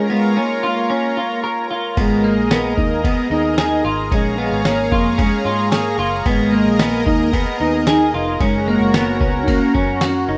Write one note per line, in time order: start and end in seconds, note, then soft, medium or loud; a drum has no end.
0.00 1.95 F4 medium
0.00 1.93 A#4 medium
0.00 1.95 C#5 medium
0.00 8.36 A#5 medium
0.10 0.40 G#3 medium
0.10 0.36 B3 medium
0.37 0.91 A#3 medium
0.37 0.63 C#4 medium
0.63 0.90 F4 medium
0.90 1.41 A#3 medium
0.90 1.17 C#4 medium
1.17 1.43 F4 medium
1.44 1.70 A#4 medium
1.71 1.97 F4 medium
1.96 2.38 G#1 medium
1.96 2.54 G#3 loud
1.96 2.24 B3 medium
1.96 8.36 G#4 medium
1.96 4.09 A#4 medium
1.96 4.09 D#5 medium
1.96 kick loud
1.96 ride medium
2.24 2.51 A#3 medium
2.38 2.76 A#1 medium
2.51 3.07 A#3 loud
2.51 2.77 B3 medium
2.51 snare loud
2.51 ride medium
2.51 tambourine medium
2.77 3.16 D#2 medium
2.77 3.04 D#4 medium
2.77 kick medium
3.04 3.31 B3 medium
3.04 3.61 B3 loud
3.04 kick loud
3.04 ride medium
3.30 3.82 D#2 medium
3.30 3.58 D#4 medium
3.58 3.99 D#4 loud
3.58 3.84 G#4 medium
3.58 snare loud
3.58 ride medium
3.58 tambourine medium
3.84 4.10 G#1 loud
3.84 4.12 F4 medium
4.11 4.50 A#1 medium
4.11 4.62 G#3 loud
4.11 4.38 C#4 medium
4.11 6.24 C#5 medium
4.11 6.23 F5 medium
4.11 kick loud
4.11 ride medium
4.38 4.65 B3 medium
4.52 4.90 G#1 medium
4.65 5.23 A#3 loud
4.65 4.92 C#4 medium
4.65 snare loud
4.65 ride medium
4.65 tambourine medium
4.91 5.30 F2 loud
4.91 5.19 F4 medium
4.91 kick loud
5.18 5.76 G#3 loud
5.18 5.45 C#4 medium
5.18 kick loud
5.18 ride medium
5.45 5.96 G#2 loud
5.45 5.71 F4 medium
5.72 6.14 A#3 loud
5.72 5.98 G#4 medium
5.72 snare loud
5.72 ride medium
5.72 tambourine medium
5.98 6.24 F#1 medium
5.98 6.26 F4 medium
6.25 6.64 G#1 medium
6.25 6.82 G#3 medium
6.25 6.53 B3 loud
6.25 8.37 A#4 medium
6.25 8.38 D#5 medium
6.25 kick loud
6.25 ride medium
6.52 6.79 A#3 medium
6.66 7.04 A#1 medium
6.79 7.37 A#3 medium
6.79 7.06 B3 medium
6.79 snare loud
6.79 ride medium
6.79 tambourine medium
7.06 7.44 D#2 loud
7.06 7.33 D#4 medium
7.06 kick loud
7.33 7.60 B3 medium
7.33 7.90 B3 loud
7.33 kick loud
7.33 ride medium
7.60 8.15 D#2 medium
7.60 7.87 D#4 medium
7.87 8.28 D#4 loud
7.87 8.14 G#4 medium
7.87 snare loud
7.87 ride medium
7.87 tambourine medium
8.14 8.39 F1 loud
8.14 8.41 F4 medium
8.40 8.78 F#1 loud
8.40 8.97 G#3 medium
8.40 8.67 C#4 medium
8.40 10.38 F#4 medium
8.40 10.38 A#4 medium
8.40 10.38 C#5 medium
8.40 10.38 A#5 medium
8.40 kick loud
8.40 ride medium
8.68 8.94 A#3 medium
8.80 9.19 F#1 medium
8.94 9.25 A#3 medium
8.94 9.20 B3 medium
8.94 snare loud
8.94 ride medium
8.94 tambourine medium
9.21 9.59 C#2 loud
9.21 9.44 B3 medium
9.21 9.47 C#4 medium
9.21 kick loud
9.42 9.50 D#4 medium
9.48 9.74 A#3 medium
9.48 10.28 C#4 medium
9.48 kick loud
9.48 ride medium
9.74 10.25 F#2 medium
9.74 10.01 C#4 medium
9.74 kick loud
10.01 10.28 F#4 medium
10.01 snare loud
10.01 ride medium
10.01 tambourine medium
10.28 10.38 F#1 loud
10.28 10.38 D#4 medium